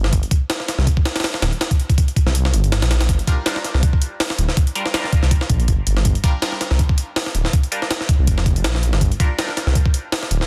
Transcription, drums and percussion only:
0.04 snare
0.13 kick, closed hi-hat
0.23 closed hi-hat
0.31 kick, closed hi-hat
0.50 snare, closed hi-hat
0.60 snare
0.68 snare, closed hi-hat
0.79 snare
0.87 kick, closed hi-hat
0.97 kick
1.05 snare, closed hi-hat
1.16 snare, closed hi-hat
1.20 snare, closed hi-hat
1.24 snare, open hi-hat
1.34 snare
1.42 snare, closed hi-hat
1.53 closed hi-hat
1.61 snare, closed hi-hat
1.71 kick, closed hi-hat
1.80 closed hi-hat
1.90 kick, closed hi-hat
1.98 kick, closed hi-hat
2.08 closed hi-hat
2.16 kick, closed hi-hat
2.27 snare
2.35 closed hi-hat
2.45 snare
2.54 closed hi-hat
2.64 closed hi-hat
2.72 snare, closed hi-hat
2.82 snare, closed hi-hat
2.91 snare, closed hi-hat
3.01 snare, closed hi-hat
3.09 kick, closed hi-hat
3.19 closed hi-hat
3.27 kick, closed hi-hat
3.46 snare, closed hi-hat
3.56 snare
3.64 snare, closed hi-hat
3.75 snare
3.83 kick, closed hi-hat
3.93 kick
4.02 closed hi-hat
4.20 snare, open hi-hat
4.30 snare
4.38 closed hi-hat
4.49 snare
4.57 kick, closed hi-hat
4.67 closed hi-hat
4.75 closed hi-hat
4.86 snare
4.94 snare, closed hi-hat
5.04 snare
5.13 kick, closed hi-hat
5.23 snare
5.31 kick, closed hi-hat
5.41 snare
5.50 kick, closed hi-hat
5.60 closed hi-hat
5.68 kick, closed hi-hat
5.87 closed hi-hat
5.97 snare
6.05 kick, closed hi-hat
6.15 closed hi-hat
6.24 kick, closed hi-hat
6.42 snare, closed hi-hat
6.52 snare
6.61 snare, closed hi-hat
6.71 snare
6.79 kick, closed hi-hat
6.89 kick
6.98 closed hi-hat
7.16 snare, open hi-hat
7.26 snare
7.35 closed hi-hat
7.45 snare
7.53 kick, closed hi-hat
7.63 closed hi-hat
7.72 closed hi-hat
7.82 snare
7.91 snare, closed hi-hat
8.01 snare
8.09 kick, closed hi-hat
8.27 kick, closed hi-hat
8.38 snare
8.46 kick, closed hi-hat
8.56 closed hi-hat
8.64 snare, closed hi-hat
8.75 snare
8.83 closed hi-hat
8.93 snare
9.01 kick, closed hi-hat
9.12 closed hi-hat
9.20 kick, closed hi-hat
9.39 snare, closed hi-hat
9.49 snare
9.57 snare, closed hi-hat
9.67 snare
9.75 kick, closed hi-hat
9.86 kick
9.94 closed hi-hat
10.12 snare, open hi-hat
10.23 snare
10.31 closed hi-hat
10.41 snare

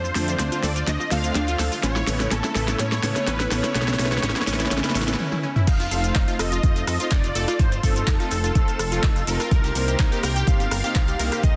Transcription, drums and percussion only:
0.05 shaker
0.15 snare, open hi-hat, shaker
0.28 closed hi-hat, shaker
0.39 snare, closed hi-hat, shaker
0.52 closed hi-hat, shaker
0.63 snare, open hi-hat, shaker
0.76 closed hi-hat, shaker
0.87 snare, closed hi-hat, shaker
1.01 shaker
1.11 snare, open hi-hat, shaker
1.24 closed hi-hat, shaker
1.35 snare, closed hi-hat, shaker
1.48 closed hi-hat, shaker
1.59 snare, open hi-hat, shaker
1.72 open hi-hat, shaker
1.83 snare, closed hi-hat, shaker
1.96 snare, shaker
2.07 snare, open hi-hat, shaker
2.20 snare, closed hi-hat, shaker
2.31 snare, closed hi-hat, shaker
2.44 snare, closed hi-hat, shaker
2.55 snare, open hi-hat, shaker
2.68 snare, closed hi-hat, shaker
2.79 snare, closed hi-hat, shaker
2.92 snare, shaker
3.03 snare, open hi-hat, shaker
3.16 snare, closed hi-hat, shaker
3.27 snare, closed hi-hat, shaker
3.40 snare, closed hi-hat, shaker
3.51 snare, open hi-hat, shaker
3.64 snare, closed hi-hat, shaker
3.75 snare, closed hi-hat, shaker
3.82 snare
3.88 snare, shaker
3.94 snare
3.99 snare, open hi-hat, shaker
4.06 snare
4.12 snare, closed hi-hat, shaker
4.18 snare
4.23 snare, closed hi-hat, shaker
4.30 snare
4.36 snare, closed hi-hat, shaker
4.42 snare
4.47 snare, open hi-hat, shaker
4.54 snare
4.60 snare, closed hi-hat, shaker
4.66 snare
4.71 snare, closed hi-hat, shaker
4.78 snare
4.84 snare, closed hi-hat, shaker
4.90 snare
4.95 snare, open hi-hat, shaker
5.02 snare
5.08 snare, closed hi-hat, shaker
5.14 snare
5.19 high tom
5.32 high tom
5.56 mid tom
5.67 kick, closed hi-hat, crash, shaker
5.80 snare, closed hi-hat, shaker
5.91 closed hi-hat, open hi-hat, shaker
6.03 closed hi-hat, shaker
6.15 kick, snare, clap, closed hi-hat, shaker
6.28 closed hi-hat, shaker
6.39 cross-stick, closed hi-hat, open hi-hat, shaker
6.52 closed hi-hat, shaker
6.63 kick, closed hi-hat, shaker
6.76 closed hi-hat, shaker
6.87 cross-stick, closed hi-hat, open hi-hat, shaker
7.00 snare, closed hi-hat, shaker
7.10 kick, snare, clap, closed hi-hat, shaker
7.24 closed hi-hat, shaker
7.35 closed hi-hat, open hi-hat, shaker
7.48 cross-stick, closed hi-hat, shaker
7.59 kick, closed hi-hat, shaker
7.72 closed hi-hat, shaker
7.83 kick, closed hi-hat, open hi-hat, shaker
7.96 closed hi-hat, shaker
8.07 kick, snare, clap, closed hi-hat, shaker
8.19 snare, closed hi-hat, shaker
8.31 closed hi-hat, open hi-hat, shaker
8.44 closed hi-hat, shaker
8.55 kick, closed hi-hat, shaker
8.68 closed hi-hat, shaker
8.79 cross-stick, closed hi-hat, open hi-hat, shaker
8.92 snare, closed hi-hat, shaker
9.03 kick, snare, clap, closed hi-hat, shaker
9.16 closed hi-hat, shaker
9.27 closed hi-hat, open hi-hat, shaker
9.40 cross-stick, closed hi-hat, shaker
9.51 kick, closed hi-hat, shaker
9.64 snare, closed hi-hat, shaker
9.75 closed hi-hat, open hi-hat, shaker
9.88 closed hi-hat, shaker
9.99 kick, snare, clap, closed hi-hat, shaker
10.12 closed hi-hat, shaker
10.23 cross-stick, closed hi-hat, open hi-hat, shaker
10.36 closed hi-hat, shaker
10.47 kick, closed hi-hat, shaker
10.60 closed hi-hat, shaker
10.71 cross-stick, closed hi-hat, open hi-hat, shaker
10.84 snare, closed hi-hat, shaker
10.95 kick, snare, clap, closed hi-hat, shaker
11.08 closed hi-hat, shaker
11.20 closed hi-hat, open hi-hat, shaker
11.32 cross-stick, closed hi-hat, shaker
11.43 kick, closed hi-hat, shaker

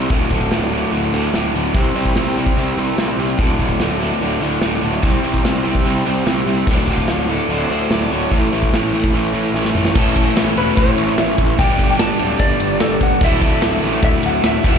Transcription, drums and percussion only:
0.09 kick, closed hi-hat
0.30 kick, closed hi-hat
0.41 kick, closed hi-hat
0.51 snare, closed hi-hat
0.72 closed hi-hat
0.83 snare
0.93 closed hi-hat
1.14 closed hi-hat
1.24 closed hi-hat
1.34 snare, closed hi-hat
1.54 closed hi-hat
1.65 closed hi-hat
1.75 kick, closed hi-hat
1.95 closed hi-hat
2.05 kick, closed hi-hat
2.15 snare, closed hi-hat
2.36 closed hi-hat
2.46 kick
2.57 closed hi-hat
2.78 closed hi-hat
2.98 snare, closed hi-hat
3.18 closed hi-hat
3.39 kick, closed hi-hat
3.59 kick, closed hi-hat
3.69 kick, closed hi-hat
3.80 snare, closed hi-hat
4.00 closed hi-hat
4.11 snare
4.21 closed hi-hat
4.41 closed hi-hat
4.52 closed hi-hat
4.61 snare, closed hi-hat
4.83 closed hi-hat
4.93 closed hi-hat
5.03 kick, closed hi-hat
5.24 closed hi-hat
5.34 kick, closed hi-hat
5.45 snare, closed hi-hat
5.65 closed hi-hat
5.75 kick
5.86 closed hi-hat
6.06 closed hi-hat
6.27 snare, closed hi-hat
6.47 closed hi-hat
6.67 kick, closed hi-hat
6.88 kick, closed hi-hat
6.98 kick, closed hi-hat
7.08 snare, closed hi-hat
7.29 closed hi-hat
7.40 snare
7.49 closed hi-hat
7.70 closed hi-hat
7.80 closed hi-hat
7.90 snare, closed hi-hat
8.11 closed hi-hat
8.22 closed hi-hat
8.32 kick, closed hi-hat
8.53 closed hi-hat
8.63 kick, closed hi-hat
8.73 snare, closed hi-hat
8.94 closed hi-hat
9.04 kick
9.14 closed hi-hat
9.35 closed hi-hat
9.55 snare
9.65 snare
9.75 mid tom
9.85 snare
9.95 kick, crash
10.16 kick, ride
10.37 snare, ride
10.57 ride
10.77 kick, ride
10.98 ride
11.18 snare, ride
11.38 kick, ride
11.59 kick, ride
11.79 kick, ride
11.99 snare, ride
12.10 snare
12.19 ride
12.39 kick, ride
12.60 ride
12.80 snare, ride
13.01 kick, ride
13.21 kick, crash
13.42 kick, ride
13.62 snare, ride
13.72 snare
13.82 ride
14.02 kick, ride
14.23 ride
14.44 snare, ride
14.64 kick, ride

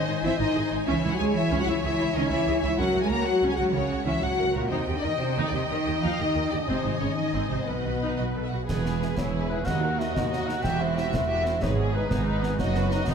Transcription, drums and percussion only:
8.69 concert bass drum, snare, crash
8.86 snare
9.02 snare
9.18 concert bass drum, snare
9.67 concert bass drum, snare
10.00 snare
10.16 concert bass drum, snare
10.33 snare
10.49 snare
10.64 concert bass drum, snare
10.98 snare
11.14 concert bass drum, snare
11.46 snare
11.63 concert bass drum, snare
12.11 concert bass drum, snare
12.43 snare
12.59 concert bass drum, snare
12.75 snare
12.91 snare
13.08 concert bass drum, snare

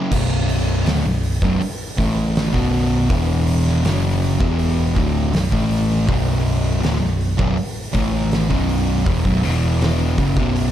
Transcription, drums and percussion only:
0.12 kick, crash
0.49 open hi-hat
0.86 snare, open hi-hat
1.23 open hi-hat
1.42 kick
1.61 open hi-hat
1.98 kick, open hi-hat
2.36 snare, open hi-hat
2.54 kick
2.72 open hi-hat
3.10 kick, open hi-hat
3.47 open hi-hat
3.67 snare
3.84 snare, open hi-hat
4.22 open hi-hat
4.40 kick
4.59 open hi-hat
4.96 kick, open hi-hat
5.33 snare, open hi-hat
5.52 kick
5.71 open hi-hat
6.09 kick, open hi-hat
6.46 open hi-hat
6.83 snare, open hi-hat
7.03 snare
7.21 open hi-hat
7.39 kick
7.58 open hi-hat
7.94 kick, open hi-hat
8.32 snare, open hi-hat
8.51 kick
8.69 open hi-hat
9.06 kick, open hi-hat
9.25 kick
9.44 open hi-hat
9.81 snare, open hi-hat
10.18 kick, open hi-hat
10.37 kick
10.56 open hi-hat

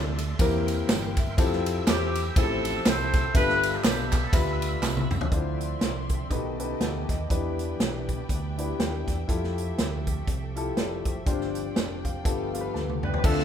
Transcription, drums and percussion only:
0.18 ride bell, tambourine
0.39 kick, ride bell, tambourine
0.68 ride bell, tambourine
0.89 snare, clap, ride bell, tambourine
1.17 kick, ride bell, tambourine
1.38 kick, ride bell, tambourine
1.53 snare
1.66 ride bell, tambourine
1.87 snare, clap, ride bell, tambourine
2.15 ride bell, tambourine
2.36 kick, ride bell, tambourine
2.65 ride bell, tambourine
2.85 snare, clap, ride bell, tambourine
3.13 kick, snare, ride bell, tambourine
3.35 kick, ride bell, tambourine
3.49 snare
3.63 ride bell, tambourine
3.84 snare, clap, ride bell, tambourine
4.12 kick, clap, ride bell, tambourine
4.33 kick, ride bell, tambourine
4.62 ride bell, tambourine
4.82 snare, clap, tambourine
4.97 high tom
5.11 mid tom, tambourine
5.21 floor tom
5.32 kick, closed hi-hat
5.60 closed hi-hat
5.81 snare, closed hi-hat
6.09 kick, closed hi-hat
6.30 kick, closed hi-hat
6.60 closed hi-hat
6.80 snare, closed hi-hat
7.09 kick, snare, closed hi-hat
7.30 kick, closed hi-hat
7.59 closed hi-hat
7.80 snare, closed hi-hat
8.09 kick, closed hi-hat
8.29 kick, closed hi-hat
8.58 closed hi-hat
8.80 snare, closed hi-hat
9.08 kick, snare, closed hi-hat
9.29 kick, closed hi-hat
9.44 snare
9.58 closed hi-hat
9.78 snare, closed hi-hat
10.07 kick, closed hi-hat
10.27 kick, closed hi-hat
10.56 closed hi-hat
10.77 snare, closed hi-hat
11.05 kick, closed hi-hat
11.26 kick, closed hi-hat
11.41 snare
11.55 closed hi-hat
11.76 snare, closed hi-hat
12.05 kick, closed hi-hat
12.25 kick, closed hi-hat
12.54 closed hi-hat
12.75 snare
12.89 high tom
13.03 mid tom
13.14 floor tom
13.24 kick, crash
13.39 snare

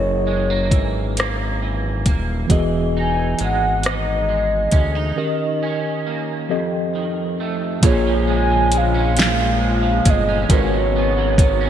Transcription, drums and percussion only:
0.71 kick, closed hi-hat
1.17 cross-stick, closed hi-hat
2.06 kick, closed hi-hat
2.50 kick, closed hi-hat
3.39 closed hi-hat
3.83 cross-stick, closed hi-hat
4.71 kick, closed hi-hat
7.83 kick, closed hi-hat
8.72 closed hi-hat
9.17 snare, closed hi-hat
10.05 kick, closed hi-hat
10.50 kick, closed hi-hat
11.38 kick, closed hi-hat

